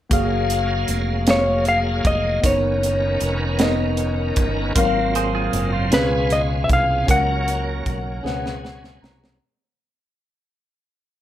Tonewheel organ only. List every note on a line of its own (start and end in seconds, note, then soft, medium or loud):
0.10 2.41 F#3 medium
0.10 2.40 A#3 soft
0.10 2.41 G#4 medium
0.10 2.40 F5 soft
2.42 4.73 D#3 soft
2.42 4.73 B3 soft
2.42 4.73 C#4 soft
2.42 4.73 A#4 medium
4.75 5.91 F#3 medium
4.75 5.91 A#3 soft
4.75 5.91 C4 soft
4.75 7.06 F4 medium
5.91 7.07 B3 soft
5.91 9.38 C#4 soft
5.91 7.07 G#4 medium
7.08 9.39 F#3 medium
7.08 8.24 A#3 medium
7.08 8.24 A#4 medium
8.23 9.39 B3 medium
8.23 9.40 G#4 medium